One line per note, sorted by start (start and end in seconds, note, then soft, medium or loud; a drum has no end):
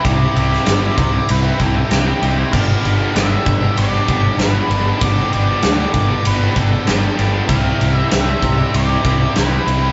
0.04 0.26 C2 medium
0.04 0.65 C3 medium
0.04 0.35 G3 medium
0.04 0.35 C4 loud
0.04 0.35 E4 loud
0.04 0.37 G4 medium
0.04 0.36 D5 loud
0.04 kick loud
0.04 ride medium
0.35 0.57 C2 medium
0.35 0.66 G3 medium
0.35 0.66 C4 medium
0.35 0.66 E4 medium
0.35 0.68 G4 medium
0.35 1.32 D5 medium
0.35 ride medium
0.49 0.64 C4 medium
0.49 0.65 E4 medium
0.49 0.66 G4 medium
0.49 snare soft
0.66 0.88 G1 loud
0.66 1.13 C3 medium
0.66 0.96 G3 medium
0.66 0.82 C4 loud
0.66 0.81 E4 medium
0.66 0.81 G4 medium
0.66 snare loud
0.66 ride loud
0.81 0.95 C4 medium
0.81 0.96 E4 medium
0.81 0.97 G4 medium
0.96 1.19 C2 medium
0.96 muted distorted electric guitar stroke soft
0.96 kick loud
0.96 ride medium
1.12 1.59 C4 medium
1.12 1.59 E4 medium
1.12 1.61 G4 medium
1.12 muted distorted electric guitar stroke soft
1.29 1.51 C2 medium
1.29 1.60 B4 loud
1.29 ride loud
1.43 1.59 C4 medium
1.43 1.60 E4 medium
1.43 1.62 G4 medium
1.59 1.81 C2 medium
1.59 1.91 G3 medium
1.59 1.90 C4 medium
1.59 1.90 E4 medium
1.59 1.92 G4 medium
1.59 1.93 A4 medium
1.59 kick medium
1.59 ride medium
1.77 muted distorted electric guitar stroke soft
1.90 2.12 C2 medium
1.90 2.37 C3 medium
1.90 2.22 G3 medium
1.90 2.07 C4 loud
1.90 2.06 E4 medium
1.90 2.05 G4 medium
1.90 2.35 G4 medium
1.90 snare medium
1.90 ride medium
2.06 2.21 C4 medium
2.06 2.22 E4 medium
2.06 2.24 G4 medium
2.22 2.43 C2 medium
2.22 2.53 G3 medium
2.22 2.38 C4 medium
2.22 2.38 E4 medium
2.22 2.37 G4 medium
2.22 ride medium
2.37 2.52 C4 medium
2.37 2.52 E4 medium
2.37 2.54 G4 medium
2.51 2.74 G1 medium
2.51 3.14 G2 medium
2.51 3.14 D3 medium
2.51 2.84 G3 medium
2.51 2.85 B3 medium
2.51 2.85 D4 medium
2.51 7.45 G4 medium
2.51 2.86 G4 loud
2.51 7.45 D5 medium
2.51 3.15 F5 loud
2.51 7.45 B5 medium
2.51 kick loud
2.51 crash loud
2.85 3.06 G1 medium
2.85 3.15 G3 medium
2.85 3.16 B3 medium
2.85 3.16 D4 medium
2.85 3.16 G4 medium
2.85 ride medium
3.00 3.17 G3 medium
3.00 3.16 B3 medium
3.00 3.17 D4 medium
3.00 3.18 G4 medium
3.15 3.37 G1 medium
3.15 4.38 G2 medium
3.15 3.62 D3 medium
3.15 3.32 G3 medium
3.15 3.31 B3 loud
3.15 3.31 D4 medium
3.15 3.30 G4 medium
3.15 3.78 E5 medium
3.15 snare loud
3.15 ride medium
3.31 3.46 G3 medium
3.31 3.46 B3 medium
3.31 3.47 D4 medium
3.31 3.47 G4 medium
3.46 3.67 G1 medium
3.46 muted distorted electric guitar stroke soft
3.46 kick loud
3.46 ride medium
3.62 4.08 G3 medium
3.62 4.08 B3 medium
3.62 4.09 D4 medium
3.62 4.10 G4 medium
3.62 muted distorted electric guitar stroke medium
3.77 3.98 G1 medium
3.77 4.42 D5 loud
3.77 ride loud
3.94 4.07 G3 medium
3.94 4.08 B3 medium
3.94 4.09 D4 medium
3.94 4.10 G4 medium
4.08 4.30 G1 medium
4.08 4.40 G3 medium
4.08 4.39 B3 medium
4.08 4.40 D4 medium
4.08 4.40 G4 medium
4.08 kick medium
4.08 ride medium
4.25 muted distorted electric guitar stroke medium
4.38 4.60 G1 medium
4.38 4.86 G2 medium
4.38 4.86 D3 medium
4.38 4.56 G3 medium
4.38 4.55 B3 medium
4.38 4.55 D4 loud
4.38 4.54 G4 medium
4.38 5.03 B4 medium
4.38 snare loud
4.38 ride medium
4.55 4.69 G3 medium
4.55 4.69 B3 medium
4.55 4.71 D4 medium
4.55 4.71 G4 medium
4.69 4.91 G1 medium
4.69 4.86 G3 medium
4.69 4.85 B3 medium
4.69 4.85 D4 medium
4.69 4.85 G4 medium
4.69 ride medium
4.85 4.99 G3 medium
4.85 4.99 B3 medium
4.85 5.01 D4 medium
4.85 5.01 G4 medium
4.99 5.23 G1 medium
4.99 5.60 G2 medium
4.99 5.61 D3 medium
4.99 5.30 G3 medium
4.99 5.30 B3 medium
4.99 5.31 D4 medium
4.99 5.32 G4 loud
4.99 5.32 D5 medium
4.99 kick loud
4.99 ride loud
5.04 5.62 D3 medium
5.04 5.50 G3 loud
5.04 5.48 B3 medium
5.31 5.55 G1 medium
5.31 5.62 G3 medium
5.31 5.61 B3 medium
5.31 5.63 D4 medium
5.31 5.63 G4 medium
5.31 6.29 D5 medium
5.31 ride medium
5.48 5.63 G3 medium
5.48 5.62 B3 medium
5.48 5.64 D4 medium
5.48 5.64 G4 medium
5.61 5.85 D2 medium
5.61 6.09 G2 medium
5.61 6.09 D3 loud
5.61 5.78 G3 medium
5.61 5.77 B3 medium
5.61 5.77 D4 loud
5.61 5.76 G4 loud
5.61 snare loud
5.61 ride loud
5.77 5.92 G3 medium
5.77 5.92 B3 medium
5.77 5.92 D4 medium
5.77 5.93 G4 medium
5.92 6.16 G1 medium
5.92 muted distorted electric guitar stroke soft
5.92 kick medium
5.92 ride medium
6.07 6.53 G3 medium
6.07 6.54 B3 medium
6.07 6.55 D4 medium
6.07 6.56 G4 medium
6.07 muted distorted electric guitar stroke soft
6.25 6.48 G1 medium
6.25 6.55 B4 loud
6.25 ride loud
6.41 6.55 G3 medium
6.41 6.55 B3 medium
6.41 6.57 D4 medium
6.41 6.57 G4 medium
6.54 6.78 G1 medium
6.54 6.87 G3 medium
6.54 6.85 B3 medium
6.54 6.87 D4 medium
6.54 6.87 G4 medium
6.54 6.89 A4 loud
6.54 kick medium
6.54 ride medium
6.71 muted distorted electric guitar stroke medium
6.86 7.09 G1 medium
6.86 7.33 G2 medium
6.86 7.33 D3 medium
6.86 7.02 G3 loud
6.86 7.01 B3 medium
6.86 7.01 D4 loud
6.86 7.00 G4 medium
6.86 7.31 G4 medium
6.86 snare loud
6.86 ride medium
7.01 7.16 G3 medium
7.01 7.16 B3 medium
7.01 7.17 D4 medium
7.01 7.18 G4 medium
7.16 7.40 G1 medium
7.16 7.32 G3 medium
7.16 7.31 B3 medium
7.16 7.31 D4 medium
7.16 7.31 G4 medium
7.16 ride medium
7.31 7.48 G3 medium
7.31 7.47 B3 medium
7.31 7.48 D4 medium
7.31 7.49 G4 medium
7.47 7.71 C2 loud
7.47 8.11 C3 medium
7.47 9.92 E3 medium
7.47 7.78 G3 loud
7.47 7.79 C4 medium
7.47 7.80 E4 loud
7.47 7.80 G4 medium
7.47 9.92 D5 medium
7.47 7.95 F5 loud
7.47 9.92 G5 medium
7.47 kick loud
7.47 ride loud
7.78 8.02 C2 medium
7.78 8.11 G3 medium
7.78 8.12 C4 medium
7.78 8.12 E4 medium
7.78 8.13 G4 medium
7.78 ride medium
7.94 8.09 C4 medium
7.94 8.10 E4 medium
7.94 8.10 G4 medium
7.94 8.13 E5 loud
8.11 8.34 C2 medium
8.11 9.35 C3 loud
8.11 8.43 G3 medium
8.11 8.28 C4 loud
8.11 8.27 E4 loud
8.11 8.26 G4 loud
8.11 8.75 E5 loud
8.11 snare loud
8.11 ride loud
8.26 8.43 C4 medium
8.26 8.43 E4 medium
8.26 8.44 G4 medium
8.42 8.64 C2 medium
8.42 muted distorted electric guitar stroke soft
8.42 kick medium
8.42 ride medium
8.57 9.04 C4 medium
8.57 9.05 E4 medium
8.57 9.06 G4 medium
8.57 muted distorted electric guitar stroke soft
8.74 8.95 C2 loud
8.74 9.39 D5 loud
8.74 ride loud
8.88 9.03 C4 medium
8.88 9.03 E4 medium
8.88 9.04 G4 medium
9.04 9.26 C2 medium
9.04 9.35 G3 medium
9.04 9.35 C4 medium
9.04 9.35 E4 medium
9.04 9.37 G4 medium
9.04 kick medium
9.04 ride medium
9.20 muted distorted electric guitar stroke medium
9.35 9.58 C2 medium
9.35 9.82 C3 medium
9.35 9.66 G3 medium
9.35 9.52 C4 medium
9.35 9.52 E4 medium
9.35 9.51 G4 loud
9.35 9.92 B4 medium
9.35 snare medium
9.35 ride medium
9.52 9.66 C4 medium
9.52 9.66 E4 medium
9.52 9.68 G4 medium
9.66 9.88 C2 medium
9.66 9.92 G3 medium
9.66 9.83 C4 medium
9.66 9.82 E4 medium
9.66 9.81 G4 medium
9.66 ride medium
9.82 9.92 C4 medium
9.82 9.92 E4 medium
9.82 9.92 G4 medium